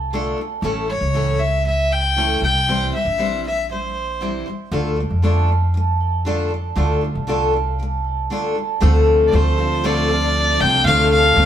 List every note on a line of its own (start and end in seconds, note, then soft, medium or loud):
0.00 0.33 C2 medium
0.00 0.60 A3 medium
0.00 0.36 A4 soft
0.00 0.62 F5 medium
0.10 0.36 D3 medium
0.10 0.38 A3 medium
0.10 0.38 D4 medium
0.10 0.67 F4 medium
0.10 0.39 F4 medium
0.15 0.39 A4 medium
0.36 0.58 D3 soft
0.36 0.67 A4 soft
0.41 0.60 A3 medium
0.61 0.98 A1 medium
0.61 0.87 A2 medium
0.61 0.89 E3 medium
0.61 2.40 A3 medium
0.61 0.89 A3 medium
0.61 0.89 C#4 medium
0.61 0.89 E4 medium
0.61 1.38 E5 soft
0.65 0.90 A4 medium
0.87 1.09 A2 soft
0.87 1.10 E3 soft
0.87 1.65 E4 medium
0.87 1.41 C#5 medium
0.91 1.10 A3 soft
1.01 2.38 C#2 medium
1.13 1.38 A2 medium
1.13 1.40 E3 medium
1.13 1.40 A3 medium
1.13 1.40 C#4 medium
1.13 1.40 E4 medium
1.13 1.41 A4 medium
1.13 1.89 C#5 medium
1.39 1.60 A2 soft
1.39 1.61 E3 soft
1.39 2.66 E5 medium
1.39 1.65 E5 medium
1.65 1.85 A2 soft
1.65 1.86 E3 medium
1.65 1.87 A3 medium
1.65 2.15 E4 medium
1.65 1.94 E5 medium
1.90 2.47 C#5 soft
1.90 2.43 G5 medium
2.15 2.40 A2 medium
2.15 2.41 E3 medium
2.15 2.42 A3 medium
2.15 2.43 C#4 medium
2.15 2.92 E4 medium
2.15 2.43 E4 medium
2.15 2.43 A4 medium
2.41 2.89 C2 medium
2.41 2.62 C3 soft
2.41 2.62 E3 soft
2.41 2.65 G3 medium
2.41 2.63 G3 soft
2.41 2.90 G5 medium
2.66 2.91 C3 medium
2.66 2.92 E3 medium
2.66 4.71 G3 medium
2.66 2.94 G3 medium
2.66 2.94 C4 medium
2.66 2.94 E4 medium
2.66 3.41 E5 medium
2.70 2.94 C5 medium
2.92 3.13 C3 soft
2.92 3.14 E3 soft
2.92 3.15 G3 soft
2.92 3.68 E4 medium
2.92 3.41 E5 medium
3.05 4.42 A#1 medium
3.18 3.43 C3 medium
3.18 3.44 E3 medium
3.18 3.44 G3 medium
3.18 3.44 C4 medium
3.18 3.45 E4 medium
3.18 3.93 C5 medium
3.18 3.45 C5 medium
3.43 3.64 C3 soft
3.43 3.65 E3 soft
3.43 4.71 E5 medium
3.47 3.66 G3 soft
3.47 3.69 E5 medium
3.69 3.90 C3 medium
3.69 3.91 E3 medium
3.69 3.91 G3 medium
3.69 4.19 E4 medium
3.69 4.43 C5 medium
3.94 4.44 C5 medium
4.20 4.45 C3 medium
4.20 4.46 E3 medium
4.20 4.47 G3 medium
4.20 4.47 C4 medium
4.20 4.77 E4 medium
4.20 4.47 E4 medium
4.20 4.47 C5 medium
4.45 4.66 C3 medium
4.45 4.67 E3 medium
4.45 4.76 C5 medium
4.49 4.68 G3 medium
4.71 5.07 D2 medium
4.71 4.95 D3 medium
4.71 6.76 A3 medium
4.71 4.98 A3 medium
4.71 4.98 D4 medium
4.71 4.98 F4 medium
4.71 4.98 A4 medium
4.71 5.48 F5 medium
4.96 5.17 D3 medium
4.96 5.19 A3 medium
4.96 5.74 D4 medium
5.10 6.73 F2 medium
5.22 5.47 D3 medium
5.22 5.49 A3 medium
5.22 5.49 D4 medium
5.22 5.49 F4 medium
5.22 6.00 A4 medium
5.22 5.50 A4 medium
5.48 5.69 D3 soft
5.48 5.71 A3 medium
5.48 6.76 F5 medium
5.74 5.94 D3 medium
5.74 5.96 A3 medium
5.74 6.25 D4 medium
6.00 6.51 A4 medium
6.25 6.49 D3 medium
6.25 6.51 A3 medium
6.25 7.01 D4 medium
6.25 6.51 D4 medium
6.25 6.52 F4 medium
6.25 6.52 A4 medium
6.51 6.71 D3 soft
6.51 6.73 A3 medium
6.51 7.28 A4 medium
6.76 7.12 D2 loud
6.76 7.00 D3 medium
6.76 8.81 A3 medium
6.76 7.02 A3 medium
6.76 7.02 D4 medium
6.76 7.02 F4 medium
6.76 7.03 A4 medium
6.76 7.52 F5 medium
7.01 7.22 D3 soft
7.01 7.78 D4 medium
7.15 8.26 C2 medium
7.27 7.52 D3 medium
7.27 7.53 A3 medium
7.27 7.54 D4 medium
7.27 7.54 F4 medium
7.27 8.04 A4 soft
7.27 7.54 A4 medium
7.53 7.74 D3 soft
7.53 7.75 A3 medium
7.53 9.57 F5 medium
7.79 8.00 D3 medium
7.79 8.01 A3 medium
7.79 8.30 D4 medium
8.04 8.54 A4 soft
8.30 8.54 D3 medium
8.30 8.56 A3 medium
8.30 9.06 D4 medium
8.30 8.56 D4 medium
8.30 8.56 F4 medium
8.30 8.57 A4 medium
8.55 8.76 D3 soft
8.55 8.77 A3 soft
8.55 9.32 A4 soft
8.80 9.29 D2 loud
8.80 11.46 C3 medium
8.80 9.37 D3 medium
8.80 11.46 F3 medium
8.80 9.31 A3 medium
8.80 10.84 A3 medium
8.80 11.46 A3 medium
8.80 9.32 C4 medium
8.80 11.46 D4 medium
8.80 9.34 F4 medium
8.80 9.33 A4 loud
9.06 11.10 D4 medium
9.28 9.37 D5 medium
9.32 10.56 D2 loud
9.32 9.58 A3 medium
9.32 9.58 C4 medium
9.32 9.59 F4 medium
9.32 9.57 A4 medium
9.32 9.82 C5 medium
9.32 9.87 C5 medium
9.57 9.84 C4 soft
9.57 9.84 F4 soft
9.57 9.83 A4 medium
9.57 10.08 F5 medium
9.83 10.09 D3 medium
9.83 10.09 A3 medium
9.83 10.09 C4 loud
9.83 10.10 F4 medium
9.83 10.08 A4 medium
9.83 10.33 C5 medium
9.83 10.62 D5 medium
10.08 10.62 F4 soft
10.08 10.59 A4 medium
10.08 10.58 F5 medium
10.12 10.61 C4 soft
10.34 11.36 C5 medium
10.59 10.83 C2 medium
10.59 10.86 F4 medium
10.59 10.85 A4 medium
10.59 11.46 F5 medium
10.59 10.85 G5 loud
10.63 10.86 C4 soft
10.85 11.32 D2 loud
10.85 11.41 D3 medium
10.85 11.46 A3 medium
10.85 11.35 A3 medium
10.85 11.37 C4 medium
10.85 11.39 F4 medium
10.85 11.38 A4 medium
10.85 11.09 F5 loud
11.10 11.46 D4 medium
11.10 11.46 F5 loud
11.36 11.46 D2 loud
11.36 11.46 A3 medium
11.36 11.46 C4 medium
11.36 11.46 F4 medium
11.36 11.46 A4 medium
11.36 11.46 A#4 medium